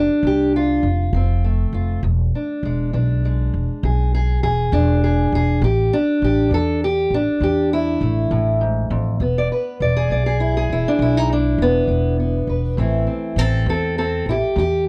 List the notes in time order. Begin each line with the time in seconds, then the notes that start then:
Already playing: D4
0.23 C2 F2
0.27 G4
0.56 F4
0.83 F1
1.13 F1 F3 C4
1.44 A3
1.73 F1 F4
2.03 E1 E2
2.35 D4
2.63 E1 G#3
2.93 B1 E3 D4
3.25 G#3
3.54 E1
3.83 B1 E2 G#4
4.15 G#4
4.43 E1 G#4
4.72 E1 E3 D4
5.04 G#4
5.32 E1 G#4
5.61 A1 A2 G4
5.93 D4
6.22 A1 G4
6.51 E2 E3 A4
6.84 G4
7.10 A1 D4
7.40 E2 A2 G4
7.73 E4
8.01 A1 A3
8.31 A1 A2
8.61 G#2
8.90 A1 F2
9.20 E1 E2 B3
9.38 D5
9.52 B4
9.80 E1 D5
9.97 G#4
10.10 B1 G#3 D5
10.26 G#4
10.40 E4
10.57 G#4
10.70 E1 E4
10.88 D4
10.99 B1 E2 E4
11.17 D#4
11.33 D4
11.58 E1 B3
11.87 E1 G#3
12.20 B3
12.47 E1 B4
12.77 A1 A2 E3 A3 C4 E4
13.07 C4
13.36 A1 C4 A4
13.66 E2 E3 C4
13.70 A4
13.98 C4 A4
14.26 A1 E4
14.30 G4
14.56 E2 A2 G4